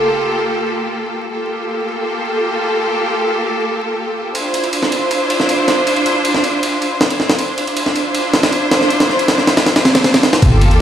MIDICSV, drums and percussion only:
0, 0, Header, 1, 2, 480
1, 0, Start_track
1, 0, Tempo, 379747
1, 1658, Time_signature, 4, 2, 24, 8
1, 13668, End_track
2, 0, Start_track
2, 0, Title_t, "Drums"
2, 5498, Note_on_c, 9, 51, 87
2, 5624, Note_off_c, 9, 51, 0
2, 5738, Note_on_c, 9, 51, 61
2, 5861, Note_off_c, 9, 51, 0
2, 5861, Note_on_c, 9, 51, 41
2, 5977, Note_off_c, 9, 51, 0
2, 5977, Note_on_c, 9, 51, 84
2, 6100, Note_on_c, 9, 38, 45
2, 6103, Note_off_c, 9, 51, 0
2, 6219, Note_on_c, 9, 51, 67
2, 6226, Note_off_c, 9, 38, 0
2, 6345, Note_off_c, 9, 51, 0
2, 6457, Note_on_c, 9, 51, 84
2, 6583, Note_off_c, 9, 51, 0
2, 6699, Note_on_c, 9, 51, 63
2, 6823, Note_on_c, 9, 38, 40
2, 6825, Note_off_c, 9, 51, 0
2, 6939, Note_on_c, 9, 51, 82
2, 6949, Note_off_c, 9, 38, 0
2, 7065, Note_off_c, 9, 51, 0
2, 7179, Note_on_c, 9, 38, 52
2, 7179, Note_on_c, 9, 51, 63
2, 7305, Note_off_c, 9, 38, 0
2, 7305, Note_off_c, 9, 51, 0
2, 7419, Note_on_c, 9, 51, 86
2, 7540, Note_off_c, 9, 51, 0
2, 7540, Note_on_c, 9, 51, 41
2, 7658, Note_off_c, 9, 51, 0
2, 7658, Note_on_c, 9, 51, 62
2, 7784, Note_off_c, 9, 51, 0
2, 7897, Note_on_c, 9, 51, 85
2, 8021, Note_on_c, 9, 38, 47
2, 8024, Note_off_c, 9, 51, 0
2, 8138, Note_on_c, 9, 51, 68
2, 8147, Note_off_c, 9, 38, 0
2, 8265, Note_off_c, 9, 51, 0
2, 8379, Note_on_c, 9, 51, 83
2, 8506, Note_off_c, 9, 51, 0
2, 8618, Note_on_c, 9, 51, 65
2, 8745, Note_off_c, 9, 51, 0
2, 8857, Note_on_c, 9, 38, 100
2, 8980, Note_on_c, 9, 51, 58
2, 8983, Note_off_c, 9, 38, 0
2, 9097, Note_on_c, 9, 38, 45
2, 9106, Note_off_c, 9, 51, 0
2, 9220, Note_off_c, 9, 38, 0
2, 9220, Note_on_c, 9, 38, 98
2, 9336, Note_on_c, 9, 51, 85
2, 9347, Note_off_c, 9, 38, 0
2, 9463, Note_off_c, 9, 51, 0
2, 9578, Note_on_c, 9, 51, 61
2, 9700, Note_off_c, 9, 51, 0
2, 9700, Note_on_c, 9, 51, 43
2, 9816, Note_off_c, 9, 51, 0
2, 9816, Note_on_c, 9, 51, 86
2, 9940, Note_on_c, 9, 38, 45
2, 9943, Note_off_c, 9, 51, 0
2, 10057, Note_on_c, 9, 51, 69
2, 10066, Note_off_c, 9, 38, 0
2, 10183, Note_off_c, 9, 51, 0
2, 10296, Note_on_c, 9, 51, 85
2, 10422, Note_off_c, 9, 51, 0
2, 10535, Note_on_c, 9, 38, 99
2, 10535, Note_on_c, 9, 51, 73
2, 10659, Note_off_c, 9, 38, 0
2, 10659, Note_off_c, 9, 51, 0
2, 10659, Note_on_c, 9, 38, 97
2, 10659, Note_on_c, 9, 51, 78
2, 10775, Note_off_c, 9, 51, 0
2, 10775, Note_on_c, 9, 51, 83
2, 10786, Note_off_c, 9, 38, 0
2, 10901, Note_off_c, 9, 51, 0
2, 11014, Note_on_c, 9, 38, 100
2, 11014, Note_on_c, 9, 51, 73
2, 11138, Note_off_c, 9, 38, 0
2, 11138, Note_on_c, 9, 38, 39
2, 11141, Note_off_c, 9, 51, 0
2, 11254, Note_on_c, 9, 51, 62
2, 11265, Note_off_c, 9, 38, 0
2, 11378, Note_off_c, 9, 51, 0
2, 11378, Note_on_c, 9, 38, 98
2, 11378, Note_on_c, 9, 51, 74
2, 11496, Note_off_c, 9, 38, 0
2, 11496, Note_on_c, 9, 38, 38
2, 11505, Note_off_c, 9, 51, 0
2, 11619, Note_on_c, 9, 51, 60
2, 11622, Note_off_c, 9, 38, 0
2, 11733, Note_off_c, 9, 51, 0
2, 11733, Note_on_c, 9, 38, 104
2, 11733, Note_on_c, 9, 51, 77
2, 11858, Note_off_c, 9, 38, 0
2, 11858, Note_on_c, 9, 38, 41
2, 11860, Note_off_c, 9, 51, 0
2, 11975, Note_off_c, 9, 38, 0
2, 11975, Note_on_c, 9, 38, 101
2, 11975, Note_on_c, 9, 51, 79
2, 12099, Note_off_c, 9, 38, 0
2, 12099, Note_off_c, 9, 51, 0
2, 12099, Note_on_c, 9, 38, 103
2, 12099, Note_on_c, 9, 51, 76
2, 12216, Note_off_c, 9, 38, 0
2, 12216, Note_off_c, 9, 51, 0
2, 12216, Note_on_c, 9, 38, 97
2, 12216, Note_on_c, 9, 51, 75
2, 12337, Note_off_c, 9, 38, 0
2, 12337, Note_off_c, 9, 51, 0
2, 12337, Note_on_c, 9, 38, 104
2, 12337, Note_on_c, 9, 51, 80
2, 12453, Note_off_c, 9, 38, 0
2, 12453, Note_off_c, 9, 51, 0
2, 12453, Note_on_c, 9, 38, 98
2, 12453, Note_on_c, 9, 51, 76
2, 12577, Note_off_c, 9, 38, 0
2, 12577, Note_off_c, 9, 51, 0
2, 12577, Note_on_c, 9, 38, 102
2, 12577, Note_on_c, 9, 51, 76
2, 12695, Note_off_c, 9, 38, 0
2, 12695, Note_off_c, 9, 51, 0
2, 12695, Note_on_c, 9, 38, 98
2, 12695, Note_on_c, 9, 51, 74
2, 12819, Note_off_c, 9, 38, 0
2, 12819, Note_off_c, 9, 51, 0
2, 12819, Note_on_c, 9, 38, 100
2, 12819, Note_on_c, 9, 51, 74
2, 12934, Note_off_c, 9, 38, 0
2, 12934, Note_off_c, 9, 51, 0
2, 12934, Note_on_c, 9, 38, 101
2, 12934, Note_on_c, 9, 51, 76
2, 13057, Note_off_c, 9, 38, 0
2, 13057, Note_off_c, 9, 51, 0
2, 13057, Note_on_c, 9, 38, 97
2, 13057, Note_on_c, 9, 51, 74
2, 13174, Note_off_c, 9, 51, 0
2, 13174, Note_on_c, 9, 51, 92
2, 13175, Note_on_c, 9, 36, 115
2, 13184, Note_off_c, 9, 38, 0
2, 13300, Note_off_c, 9, 51, 0
2, 13302, Note_off_c, 9, 36, 0
2, 13416, Note_on_c, 9, 51, 67
2, 13538, Note_off_c, 9, 51, 0
2, 13538, Note_on_c, 9, 51, 45
2, 13664, Note_off_c, 9, 51, 0
2, 13668, End_track
0, 0, End_of_file